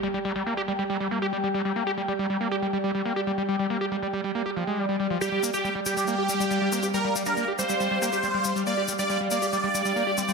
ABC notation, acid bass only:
X:1
M:4/4
L:1/16
Q:1/4=139
K:Gm
V:1 name="Acid bass" clef=bass
G, G, G, G, B, G G, G, G, G, B, G G, G, G, G, | B, G G, G, G, G, B, G G, G, G, G, B, G G, G, | G, G, B, G G, G, G, G, B, G F, _A, G, G, G, F, | G, G, B, G G, G, G, G, B, G G, G, G, G, B, G |
G, G, G, G, B, G G, G, G, G, B, G G, G, G, G, | B, G G, G, G, G, B, G G, G, G, G, B, G G, G, |]